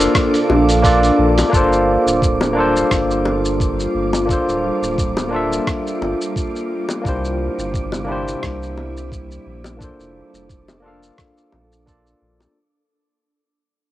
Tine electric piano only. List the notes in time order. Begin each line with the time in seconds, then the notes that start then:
Already playing: A#3 D4 F4 A4 C5 F5
0.82 A#3 D4 F4 A4 D5
1.49 A#3 D4 F4
1.55 A4 C5
2.53 A#3 D4 F4
2.59 A4 C5
4.25 A#3 D4 F4
4.31 A4 C5
5.29 A#3 D4 F4
5.34 A4 E5
7.01 A#3 D4 E4
7.07 G4 C5
8.04 A#3 D4 E4
8.10 G4 C5
9.77 A#3 D4 F4
9.83 A4 C5
10.80 A#3 D4 F4
10.86 A4 F5
11.86 A#3 D4 F4 A4 D5